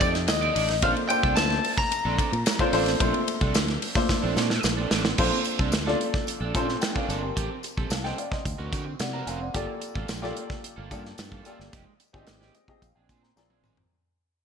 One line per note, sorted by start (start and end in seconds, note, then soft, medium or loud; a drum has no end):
0.00 0.29 F2 medium
0.00 0.70 A3 medium
0.00 0.67 D#4 medium
0.00 0.16 D#4 medium
0.00 0.67 F4 medium
0.00 0.67 G4 medium
0.00 0.15 A4 medium
0.00 0.08 D5 medium
0.00 0.13 D5 medium
0.00 0.67 D#5 medium
0.00 kick loud
0.00 ride medium
0.00 tambourine medium
0.15 muted clean electric guitar stroke soft
0.15 snare soft
0.15 ride soft
0.28 0.50 D#2 loud
0.28 0.84 D#5 loud
0.28 muted clean electric guitar stroke medium
0.28 snare loud
0.28 ride medium
0.28 tambourine medium
0.41 0.54 D#4 medium
0.41 0.55 A4 medium
0.41 0.55 D5 medium
0.41 ride soft
0.55 0.82 A1 medium
0.55 0.75 D#4 medium
0.55 0.69 A4 medium
0.55 0.68 D5 medium
0.55 open hi-hat medium
0.55 ride medium
0.55 tambourine medium
0.68 muted clean electric guitar stroke soft
0.68 snare soft
0.68 ride soft
0.82 0.93 A#1 loud
0.82 1.06 A#3 medium
0.82 1.02 C4 medium
0.82 1.06 D4 medium
0.82 0.97 D4 loud
0.82 1.06 F4 medium
0.82 1.06 A4 medium
0.82 0.96 A4 loud
0.82 1.07 C5 medium
0.82 0.91 F5 loud
0.82 kick loud
0.82 hi-hat pedal medium
0.82 ride medium
0.97 muted clean electric guitar stroke soft
0.97 ride soft
1.09 1.33 A#3 medium
1.09 1.33 D4 medium
1.09 1.33 F4 medium
1.09 1.33 A4 medium
1.09 1.34 C5 medium
1.09 1.37 G5 loud
1.09 muted clean electric guitar stroke soft
1.09 ride medium
1.09 tambourine medium
1.23 1.34 C2 medium
1.23 1.36 C4 medium
1.23 1.36 D4 medium
1.23 1.37 A4 medium
1.23 kick loud
1.23 ride soft
1.36 1.58 D2 loud
1.36 2.30 A3 medium
1.36 2.30 A#3 medium
1.36 2.30 D4 medium
1.36 2.30 F4 medium
1.36 2.31 C5 medium
1.36 1.78 A5 loud
1.36 muted clean electric guitar stroke soft
1.36 snare loud
1.36 ride medium
1.36 tambourine medium
1.50 muted clean electric guitar stroke medium
1.50 snare soft
1.50 ride soft
1.64 open hi-hat medium
1.64 ride medium
1.64 tambourine soft
1.77 4.60 A#5 loud
1.77 muted clean electric guitar stroke medium
1.77 kick loud
1.77 snare soft
1.77 ride soft
1.91 muted clean electric guitar stroke soft
1.91 hi-hat pedal medium
1.91 ride medium
1.91 tambourine soft
2.05 2.16 A#1 medium
2.05 2.17 C4 medium
2.05 2.17 D4 medium
2.05 2.18 A4 medium
2.18 2.34 C4 medium
2.18 2.32 D4 medium
2.18 2.31 A4 medium
2.18 kick loud
2.18 ride medium
2.18 tambourine soft
2.33 2.43 A#2 loud
2.33 muted clean electric guitar stroke soft
2.33 ride soft
2.46 muted clean electric guitar stroke soft
2.46 snare loud
2.46 ride medium
2.46 tambourine medium
2.59 2.71 A#3 medium
2.59 2.73 C4 soft
2.59 2.71 D4 medium
2.59 2.73 D4 medium
2.59 2.71 F4 medium
2.59 2.74 A4 medium
2.59 2.72 A4 medium
2.59 2.72 C5 loud
2.59 kick loud
2.59 ride soft
2.72 2.94 A1 medium
2.72 2.96 A#3 loud
2.72 2.93 C4 medium
2.72 2.96 D4 medium
2.72 2.87 D4 medium
2.72 2.97 F4 medium
2.72 2.97 A4 medium
2.72 2.86 A4 medium
2.72 2.97 C5 loud
2.72 open hi-hat medium
2.72 ride medium
2.72 tambourine medium
2.86 muted clean electric guitar stroke soft
2.86 snare soft
2.86 ride soft
2.99 3.11 A#1 loud
2.99 3.82 A3 medium
2.99 3.81 A#3 medium
2.99 3.20 C4 medium
2.99 3.82 D4 medium
2.99 3.14 D4 medium
2.99 3.82 F4 medium
2.99 3.13 A4 medium
2.99 3.82 C5 loud
2.99 kick loud
2.99 hi-hat pedal medium
2.99 ride medium
2.99 tambourine soft
3.14 muted clean electric guitar stroke soft
3.14 ride soft
3.28 muted clean electric guitar stroke soft
3.28 ride medium
3.28 tambourine medium
3.41 3.52 C2 medium
3.41 3.54 C4 medium
3.41 3.55 D4 medium
3.41 3.55 A4 medium
3.41 kick loud
3.41 ride soft
3.54 3.76 D2 loud
3.54 muted clean electric guitar stroke soft
3.54 snare loud
3.54 ride medium
3.54 tambourine medium
3.68 muted clean electric guitar stroke soft
3.68 snare soft
3.68 ride soft
3.82 open hi-hat medium
3.82 ride medium
3.82 tambourine soft
3.95 4.89 A3 medium
3.95 4.89 A#3 medium
3.95 4.89 D4 medium
3.95 4.89 F4 medium
3.95 4.89 C5 loud
3.95 muted clean electric guitar stroke soft
3.95 kick loud
3.95 snare soft
3.95 ride medium
4.09 muted clean electric guitar stroke soft
4.09 kick medium
4.09 snare medium
4.09 tambourine soft
4.22 4.34 A#1 medium
4.22 4.35 C4 medium
4.22 4.35 D4 medium
4.22 4.36 A4 medium
4.36 4.58 A#2 medium
4.36 4.52 C4 medium
4.36 4.50 D4 medium
4.36 4.49 A4 medium
4.36 snare medium
4.36 tambourine soft
4.50 muted clean electric guitar stroke medium
4.50 snare medium
4.63 4.86 A#1 loud
4.63 muted clean electric guitar stroke soft
4.63 snare medium
4.63 tambourine medium
4.77 4.89 C4 medium
4.77 4.91 D4 medium
4.77 4.91 A4 medium
4.91 5.13 A1 medium
4.91 5.10 C4 medium
4.91 5.05 D4 medium
4.91 5.04 A4 loud
4.91 snare loud
4.91 tambourine soft
5.05 muted clean electric guitar stroke soft
5.05 snare loud
5.18 5.29 A#1 loud
5.18 5.77 A#3 medium
5.18 5.38 C4 loud
5.18 5.77 D4 medium
5.18 5.31 D4 loud
5.18 5.77 F4 medium
5.18 5.77 A4 medium
5.18 5.30 A4 medium
5.18 5.77 C5 loud
5.18 kick loud
5.18 crash loud
5.18 tambourine soft
5.32 muted clean electric guitar stroke medium
5.44 muted clean electric guitar stroke soft
5.44 closed hi-hat medium
5.44 tambourine medium
5.59 5.72 C2 medium
5.59 5.71 C4 medium
5.59 5.72 D4 medium
5.59 5.72 A4 medium
5.59 kick loud
5.72 5.94 D2 loud
5.72 muted clean electric guitar stroke soft
5.72 snare loud
5.72 closed hi-hat medium
5.72 tambourine medium
5.86 6.45 A#3 medium
5.86 5.98 C4 medium
5.86 6.45 D4 medium
5.86 5.99 D4 medium
5.86 6.45 F4 medium
5.86 5.99 A4 medium
5.86 6.45 A4 medium
5.86 6.45 D5 loud
5.86 snare soft
6.00 muted clean electric guitar stroke soft
6.00 closed hi-hat medium
6.13 muted clean electric guitar stroke medium
6.13 kick loud
6.13 snare soft
6.26 muted clean electric guitar stroke soft
6.26 closed hi-hat medium
6.26 tambourine soft
6.41 6.51 A#1 medium
6.41 6.53 C4 medium
6.41 6.54 D4 medium
6.41 6.54 A4 medium
6.54 6.76 A#2 medium
6.54 7.01 A#3 medium
6.54 6.74 C4 medium
6.54 6.61 C#4 medium
6.54 6.68 D4 medium
6.54 7.02 F4 medium
6.54 6.82 A4 medium
6.54 6.67 A4 loud
6.54 6.83 C5 loud
6.54 kick loud
6.54 closed hi-hat medium
6.54 tambourine soft
6.62 7.05 D4 medium
6.69 muted clean electric guitar stroke soft
6.69 snare soft
6.81 6.95 G5 medium
6.81 muted clean electric guitar stroke soft
6.81 snare loud
6.81 closed hi-hat medium
6.81 tambourine medium
6.95 7.07 C4 medium
6.95 7.07 D4 medium
6.95 7.08 A4 medium
6.95 7.07 D5 medium
6.95 7.09 F5 medium
6.95 kick loud
7.08 7.30 G1 medium
7.08 7.28 C4 medium
7.08 7.23 D4 medium
7.08 7.22 A4 loud
7.08 7.21 A#4 medium
7.08 7.22 D5 medium
7.08 closed hi-hat medium
7.08 tambourine soft
7.22 7.49 G4 medium
7.22 7.48 A#4 medium
7.22 muted clean electric guitar stroke soft
7.36 7.48 A1 loud
7.36 7.56 C4 medium
7.36 7.50 G4 loud
7.36 7.49 A4 medium
7.36 kick loud
7.36 closed hi-hat loud
7.50 muted clean electric guitar stroke soft
7.63 muted clean electric guitar stroke soft
7.63 closed hi-hat medium
7.63 tambourine medium
7.77 7.88 A#1 medium
7.77 7.90 C4 medium
7.77 7.90 G4 medium
7.77 7.91 A4 medium
7.77 kick medium
7.90 8.12 C2 loud
7.90 8.04 F5 soft
7.90 8.04 A5 medium
7.90 muted clean electric guitar stroke soft
7.90 snare loud
7.90 closed hi-hat medium
7.90 tambourine medium
8.04 8.17 C4 medium
8.04 8.18 G4 medium
8.04 8.18 A4 medium
8.04 8.18 D#5 medium
8.04 8.17 G5 medium
8.04 snare soft
8.18 8.31 D5 medium
8.18 8.31 F5 medium
8.18 muted clean electric guitar stroke soft
8.18 closed hi-hat medium
8.31 8.58 C5 medium
8.31 8.58 D#5 medium
8.31 muted clean electric guitar stroke medium
8.31 kick loud
8.31 snare soft
8.45 8.56 D2 loud
8.45 muted clean electric guitar stroke soft
8.45 kick medium
8.45 closed hi-hat medium
8.45 tambourine soft
8.58 8.70 D2 medium
8.58 8.71 C4 medium
8.58 8.71 F#4 medium
8.58 8.72 A#4 medium
8.72 8.94 D3 medium
8.72 8.92 C4 medium
8.72 8.85 F#4 loud
8.72 8.84 A#4 loud
8.72 kick medium
8.72 closed hi-hat medium
8.72 tambourine soft
8.85 muted clean electric guitar stroke soft
8.99 9.21 C3 medium
8.99 9.13 D5 medium
8.99 9.12 F#5 medium
8.99 muted clean electric guitar stroke soft
8.99 snare loud
8.99 closed hi-hat medium
8.99 tambourine medium
9.13 9.25 C4 medium
9.13 9.26 F#4 medium
9.13 9.27 A#4 medium
9.13 9.27 F#5 medium
9.13 9.27 A#5 medium
9.26 9.49 F1 medium
9.26 9.46 C4 medium
9.26 9.40 F#4 medium
9.26 9.39 A#4 medium
9.26 9.41 F5 medium
9.26 9.40 G#5 medium
9.26 closed hi-hat medium
9.26 tambourine medium
9.40 9.53 D5 medium
9.40 9.67 F#5 medium
9.40 muted clean electric guitar stroke soft
9.54 9.65 G1 loud
9.54 10.13 A#3 medium
9.54 9.74 A#3 medium
9.54 10.13 F4 medium
9.54 9.67 F4 loud
9.54 10.13 G4 medium
9.54 10.13 A4 medium
9.54 9.66 A4 medium
9.54 10.13 D5 loud
9.54 kick loud
9.54 closed hi-hat medium
9.67 muted clean electric guitar stroke medium
9.80 muted clean electric guitar stroke soft
9.80 closed hi-hat medium
9.80 tambourine medium
9.95 10.07 A1 medium
9.95 10.07 A#3 medium
9.95 10.08 F4 medium
9.95 10.08 A4 medium
9.95 kick loud
10.08 10.31 A#1 loud
10.08 muted clean electric guitar stroke soft
10.08 snare loud
10.08 closed hi-hat medium
10.08 tambourine medium
10.22 10.81 A#3 loud
10.22 10.35 A#3 medium
10.22 10.81 F4 medium
10.22 10.36 F4 medium
10.22 10.81 G4 medium
10.22 10.36 A4 medium
10.22 10.81 A4 medium
10.22 10.81 D5 loud
10.22 snare soft
10.37 muted clean electric guitar stroke soft
10.37 closed hi-hat medium
10.50 muted clean electric guitar stroke soft
10.50 kick loud
10.50 snare soft
10.63 muted clean electric guitar stroke soft
10.63 closed hi-hat medium
10.63 tambourine soft
10.76 10.88 G1 medium
10.76 10.89 A#3 medium
10.76 10.89 F4 medium
10.76 10.90 A4 medium
10.90 11.12 G2 medium
10.90 11.06 A#3 medium
10.90 11.38 A#3 medium
10.90 11.04 F4 medium
10.90 11.38 F4 medium
10.90 11.38 G4 medium
10.90 11.03 A4 medium
10.90 11.38 A4 medium
10.90 11.38 D5 medium
10.90 kick loud
10.90 closed hi-hat medium
10.90 tambourine soft
11.04 muted clean electric guitar stroke soft
11.04 snare soft
11.18 11.40 G2 loud
11.18 muted clean electric guitar stroke soft
11.18 snare loud
11.18 closed hi-hat medium
11.18 tambourine medium
11.31 11.44 A#3 medium
11.31 11.44 F4 medium
11.31 11.45 A4 medium
11.31 kick medium
11.45 11.65 A#3 medium
11.45 11.73 A#3 medium
11.45 11.59 F4 medium
11.45 11.73 F4 medium
11.45 11.73 G4 medium
11.45 11.73 A4 medium
11.45 11.58 A4 loud
11.45 11.73 D5 loud
11.45 closed hi-hat medium
11.45 tambourine soft
11.59 11.70 G1 medium
11.59 muted clean electric guitar stroke soft
11.59 snare soft
11.72 11.84 F1 loud
11.72 11.92 G#3 medium
11.72 11.86 D#4 medium
11.72 11.85 G4 medium
11.72 kick loud
11.72 closed hi-hat loud
11.72 tambourine soft
11.86 muted clean electric guitar stroke medium
12.00 muted clean electric guitar stroke soft
12.00 closed hi-hat medium
12.00 tambourine medium
12.13 12.25 G#1 medium
12.13 12.26 G#3 medium
12.13 12.60 C4 medium
12.13 12.27 D#4 medium
12.13 12.60 F4 medium
12.13 12.27 G4 medium
12.13 12.60 G4 medium
12.13 12.61 G#4 medium
12.13 12.21 D5 medium
12.13 kick loud
12.21 12.53 D#5 medium
12.27 12.49 G#1 medium
12.27 muted clean electric guitar stroke soft
12.27 snare loud
12.27 closed hi-hat medium
12.27 tambourine medium
12.41 12.54 G#3 medium
12.41 12.54 D#4 medium
12.41 12.54 G4 medium
12.41 snare soft
12.55 12.68 D#5 medium
12.55 muted clean electric guitar stroke soft
12.55 closed hi-hat medium
12.55 tambourine soft
12.68 12.82 C4 medium
12.68 12.82 F4 medium
12.68 12.82 G4 medium
12.68 12.82 G#4 medium
12.68 12.83 D#5 loud
12.68 muted clean electric guitar stroke medium
12.68 kick loud
12.81 12.93 A#1 loud
12.81 12.94 F5 medium
12.81 muted clean electric guitar stroke soft
12.81 kick loud
12.81 closed hi-hat medium
12.81 tambourine soft
12.95 13.06 A#1 medium
12.95 13.08 C4 soft
12.95 13.09 D4 soft
12.95 13.09 G#4 medium
12.95 13.08 G5 medium
13.09 13.31 A#2 medium
13.09 13.29 C4 medium
13.09 13.23 D4 medium
13.09 13.22 G#4 medium
13.09 13.22 G#5 medium
13.09 kick medium
13.09 closed hi-hat medium
13.09 tambourine soft
13.22 13.35 A#5 medium
13.22 muted clean electric guitar stroke soft
13.22 snare soft
13.36 13.64 A#1 medium
13.36 13.83 C4 medium
13.36 13.83 F4 medium
13.36 13.83 G#4 medium
13.36 13.83 A#4 medium
13.36 13.84 D5 medium
13.36 13.87 A#5 medium
13.36 muted clean electric guitar stroke soft
13.36 snare medium
13.36 tambourine medium
13.50 13.62 C4 medium
13.50 13.63 D4 medium
13.50 13.64 G#4 medium
13.50 high tom medium
13.63 13.85 G#1 medium
13.63 13.83 C4 medium
13.63 13.78 D4 medium
13.63 13.77 G#4 medium
13.63 mid tom medium
13.63 tambourine soft
13.77 muted clean electric guitar stroke soft
13.77 floor tom loud